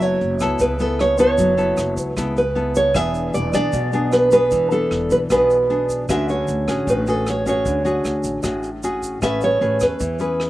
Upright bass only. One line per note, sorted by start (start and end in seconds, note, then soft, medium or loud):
0.00 0.18 F#1 medium
0.21 0.39 F#1 medium
0.40 0.59 C#2 medium
0.60 1.34 C#2 medium
1.38 1.75 F#1 medium
1.78 1.96 F#1 medium
1.97 2.15 C#2 medium
2.16 2.91 C#2 medium
2.95 3.31 E1 medium
3.34 3.52 E1 medium
3.54 3.72 B1 medium
3.73 4.48 B1 medium
4.51 4.88 E1 medium
4.91 5.09 E1 medium
5.11 5.29 B1 medium
5.30 6.05 B1 medium
6.09 6.45 D2 medium
6.48 6.66 D2 medium
6.68 6.86 A1 medium
6.87 7.61 A1 medium
7.66 8.02 D2 medium
8.05 8.23 D2 medium
8.24 8.42 A1 medium
8.44 9.18 A1 medium
9.22 9.58 A1 medium
9.61 9.79 A1 medium
9.81 9.99 E2 medium
10.01 10.50 E2 medium